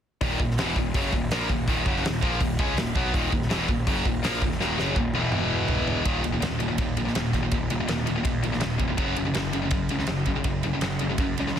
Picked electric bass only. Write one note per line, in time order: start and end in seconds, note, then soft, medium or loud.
0.22 0.39 D#1 medium
0.41 0.57 D#1 medium
0.59 0.75 E1 medium
0.77 0.94 D#1 medium
0.95 1.12 F#1 medium
1.13 1.30 D#1 medium
1.33 1.49 A#1 medium
1.50 1.67 D#1 medium
1.68 1.85 D#1 medium
1.87 2.03 F#1 medium
2.05 2.22 D#1 medium
2.23 2.40 A#1 medium
2.41 2.58 D#1 medium
2.60 2.76 C#2 medium
2.77 2.94 D#1 medium
2.96 3.13 B1 medium
3.15 3.31 D#1 loud
3.33 3.50 D#1 medium
3.51 3.68 E1 loud
3.69 3.86 D#1 medium
3.88 4.04 F#1 loud
4.06 4.22 D#1 medium
4.25 4.41 A#1 medium
4.42 4.59 D#1 medium
4.62 4.78 D#1 loud
4.81 4.96 F#1 medium
4.96 5.13 D#1 medium
5.16 6.03 E1 loud
6.06 6.21 D#1 medium
6.27 6.41 D#1 medium
6.43 6.58 D#1 medium
6.62 6.76 D#1 medium
6.79 6.94 D#2 medium
6.97 7.12 A#1 medium
7.17 7.31 D#1 medium
7.34 7.49 D#1 medium
7.52 7.67 D#1 medium
7.72 7.86 D#1 medium
7.91 8.05 D#1 medium
8.09 8.23 D#1 medium
8.25 8.40 D#2 medium
8.46 8.60 A#1 medium
8.64 8.78 D#1 medium
8.80 8.95 F1 medium
8.99 9.14 F#1 medium
9.18 9.32 F#1 medium
9.36 9.50 F#1 medium
9.55 9.69 F#1 medium
9.72 9.87 F#2 medium
9.90 10.05 C#2 medium
10.10 10.24 F#1 medium
10.27 10.42 F#1 medium
10.45 10.60 F#1 medium
10.64 10.78 F#1 medium
10.83 10.97 F#1 medium
11.02 11.16 F#1 medium
11.19 11.33 F#2 medium
11.39 11.53 C#2 medium